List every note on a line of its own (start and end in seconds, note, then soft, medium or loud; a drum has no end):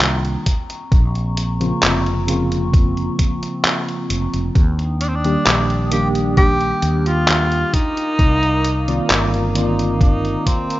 0.00 0.35 C2 loud
0.00 0.43 D#3 medium
0.00 0.43 G3 medium
0.00 0.44 A#3 medium
0.00 0.44 D4 medium
0.00 0.45 F4 medium
0.00 0.43 G5 medium
0.00 4.52 A#5 medium
0.00 0.43 D#6 medium
0.00 clap loud
0.00 closed hi-hat medium
0.25 closed hi-hat soft
0.46 4.52 C4 medium
0.46 4.51 C#6 medium
0.46 kick medium
0.46 closed hi-hat medium
0.70 closed hi-hat medium
0.92 1.72 A#1 loud
0.92 kick loud
0.92 closed hi-hat medium
1.15 closed hi-hat soft
1.37 closed hi-hat medium
1.60 2.23 C#3 medium
1.60 2.23 F3 medium
1.60 2.23 A#3 medium
1.60 2.23 C4 medium
1.60 2.23 F4 medium
1.60 closed hi-hat medium
1.82 3.08 F1 medium
1.82 clap loud
1.82 closed hi-hat medium
2.06 closed hi-hat soft
2.27 4.52 C#3 medium
2.27 4.53 F3 medium
2.27 4.53 A#3 medium
2.27 4.53 C4 medium
2.27 4.54 F4 medium
2.27 closed hi-hat medium
2.52 closed hi-hat medium
2.74 kick loud
2.74 closed hi-hat medium
2.97 closed hi-hat soft
3.19 kick medium
3.19 closed hi-hat medium
3.43 closed hi-hat medium
3.65 clap loud
3.65 closed hi-hat soft
3.88 closed hi-hat soft
4.10 4.26 F1 medium
4.10 closed hi-hat medium
4.34 4.49 F1 medium
4.34 closed hi-hat soft
4.55 5.35 D#2 loud
4.55 7.70 D4 medium
4.55 7.70 G5 medium
4.55 7.70 D#6 medium
4.55 kick loud
4.55 closed hi-hat soft
4.79 closed hi-hat soft
5.01 5.10 D4 loud
5.01 closed hi-hat medium
5.08 5.17 C4 medium
5.16 5.92 D4 loud
5.24 5.86 D#3 medium
5.24 5.87 G3 medium
5.24 5.87 A#3 medium
5.24 5.87 D4 medium
5.24 5.87 G4 medium
5.24 closed hi-hat soft
5.46 6.72 A#1 medium
5.46 clap loud
5.46 closed hi-hat medium
5.70 closed hi-hat soft
5.91 7.71 D#3 medium
5.91 7.71 G3 medium
5.91 7.71 A#3 medium
5.91 7.72 D4 medium
5.91 6.08 G4 loud
5.91 7.72 G4 medium
5.91 closed hi-hat medium
6.15 closed hi-hat medium
6.37 6.99 G4 loud
6.37 kick loud
6.37 closed hi-hat soft
6.61 closed hi-hat soft
6.82 7.62 D#2 medium
6.82 closed hi-hat medium
6.99 7.08 G4 medium
7.06 7.75 F4 loud
7.06 closed hi-hat medium
7.28 clap loud
7.28 closed hi-hat soft
7.52 closed hi-hat soft
7.73 9.29 D#4 loud
7.73 10.80 A#4 medium
7.73 10.80 F5 medium
7.73 10.80 A#5 medium
7.73 10.80 D6 medium
7.73 kick medium
7.73 closed hi-hat medium
7.97 closed hi-hat soft
8.19 8.99 C2 loud
8.19 kick loud
8.19 closed hi-hat soft
8.43 closed hi-hat soft
8.65 closed hi-hat medium
8.87 9.50 D#3 medium
8.87 9.50 A#3 medium
8.87 9.50 C4 medium
8.87 9.51 F4 loud
8.87 9.50 D5 medium
8.87 closed hi-hat medium
9.10 10.35 G1 medium
9.10 clap loud
9.10 closed hi-hat medium
9.34 closed hi-hat soft
9.54 10.80 D#3 medium
9.54 10.80 A#3 medium
9.54 10.80 C4 medium
9.54 9.98 D#4 medium
9.54 10.80 F4 medium
9.54 10.80 D5 medium
9.54 closed hi-hat medium
9.79 closed hi-hat medium
10.01 10.48 D#4 loud
10.01 kick loud
10.01 closed hi-hat medium
10.25 closed hi-hat soft
10.46 10.80 C4 medium
10.46 kick medium
10.46 closed hi-hat medium
10.70 closed hi-hat medium